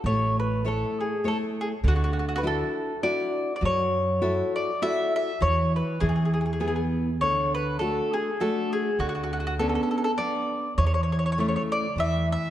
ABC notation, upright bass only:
X:1
M:3/4
L:1/8
Q:"Swing" 1/4=101
K:A
V:1 name="Upright bass" clef=bass
A,,,4 z2 | D,,4 z2 | F,,4 z2 | E,,2 E,,4 |
D,,4 z2 | D,,4 z2 | E,,4 E,,2 |]